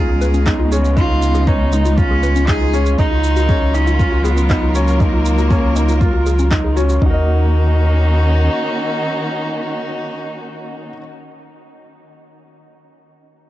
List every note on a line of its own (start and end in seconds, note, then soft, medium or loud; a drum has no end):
0.00 2.96 C#2 medium
0.00 2.99 C#3 medium
0.00 2.98 G#3 medium
0.00 2.98 B3 medium
0.00 0.41 F4 medium
0.00 0.72 G#4 loud
0.09 0.17 G#4 medium
0.21 0.27 B4 loud
0.21 shaker medium
0.27 7.02 F4 medium
0.34 0.43 C#4 medium
0.34 shaker soft
0.46 0.69 D#4 medium
0.46 kick loud
0.46 clap medium
0.46 shaker soft
0.60 0.71 F4 loud
0.72 0.94 C#4 medium
0.72 0.77 G#4 medium
0.72 shaker medium
0.85 shaker soft
0.97 1.09 C#4 medium
0.97 1.41 D#4 medium
0.97 1.49 F4 loud
0.97 kick loud
0.97 shaker soft
1.10 1.18 F4 medium
1.22 shaker medium
1.35 1.43 G#4 medium
1.35 shaker soft
1.47 1.70 C#4 medium
1.47 1.91 D#4 loud
1.47 1.56 B4 medium
1.47 kick loud
1.47 shaker soft
1.73 1.78 C#4 medium
1.73 1.95 D#4 medium
1.73 shaker medium
1.85 1.97 F4 medium
1.85 shaker soft
1.91 1.99 D#4 medium
1.98 2.49 C#4 loud
1.98 2.43 F4 medium
1.98 kick loud
1.98 shaker soft
2.11 2.19 G#4 medium
2.23 2.28 B4 loud
2.23 shaker medium
2.36 2.44 C#4 medium
2.36 shaker soft
2.48 2.70 D#4 medium
2.48 2.86 G#4 loud
2.48 kick loud
2.48 clap medium
2.48 shaker soft
2.61 2.73 F4 loud
2.73 2.96 C#4 medium
2.73 2.79 G#4 medium
2.73 shaker medium
2.86 shaker soft
2.98 6.99 C#2 loud
2.98 7.02 F#3 medium
2.98 3.10 C#4 medium
2.98 3.76 D#4 loud
2.98 3.43 D#4 loud
2.98 kick loud
2.98 shaker soft
3.11 3.20 F4 medium
3.24 shaker medium
3.29 7.02 A#4 medium
3.36 3.45 F#4 medium
3.36 shaker soft
3.49 3.71 C#4 medium
3.49 3.58 G#4 medium
3.49 kick loud
3.49 shaker soft
3.74 4.26 C#4 loud
3.74 3.79 C#4 medium
3.74 3.96 D#4 medium
3.74 shaker medium
3.87 3.99 F4 medium
3.87 shaker soft
3.99 4.44 F4 medium
3.99 kick medium
3.99 shaker soft
4.12 4.21 F#4 medium
4.24 4.77 B3 loud
4.24 4.30 G#4 loud
4.24 shaker medium
4.37 4.46 C#4 medium
4.37 shaker soft
4.50 4.72 D#4 medium
4.50 kick loud
4.50 clap medium
4.50 shaker soft
4.62 4.74 F4 loud
4.75 6.52 A#3 loud
4.75 4.97 C#4 medium
4.75 4.80 F#4 medium
4.75 shaker medium
4.88 shaker soft
5.00 5.12 C#4 medium
5.00 5.45 D#4 medium
5.00 kick loud
5.00 shaker soft
5.13 5.22 F4 medium
5.26 shaker medium
5.38 5.47 F#4 medium
5.38 shaker soft
5.50 5.73 C#4 medium
5.50 5.59 G#4 medium
5.50 kick loud
5.50 shaker soft
5.76 5.81 C#4 medium
5.76 5.98 D#4 medium
5.76 shaker medium
5.88 6.00 F4 medium
5.88 shaker soft
6.01 6.46 F4 medium
6.01 kick loud
6.01 shaker soft
6.13 6.22 F#4 medium
6.26 6.35 G#4 medium
6.26 shaker medium
6.39 6.44 C#4 medium
6.39 shaker soft
6.51 6.74 D#4 medium
6.51 kick loud
6.51 clap medium
6.51 shaker soft
6.64 6.73 G#4 medium
6.76 6.99 C#4 medium
6.76 6.82 F#4 loud
6.76 shaker medium
6.89 6.98 F#4 medium
6.89 shaker soft
7.02 8.49 D#2 medium
7.02 10.88 D#3 medium
7.02 7.25 C#4 medium
7.02 10.88 D#4 loud
7.02 10.88 D#4 medium
7.02 kick loud
7.06 10.96 A#3 medium
7.06 10.92 F#4 medium
7.06 10.96 A#4 medium
7.14 11.03 C#4 medium
7.14 11.00 D#5 medium
7.25 11.11 F#4 medium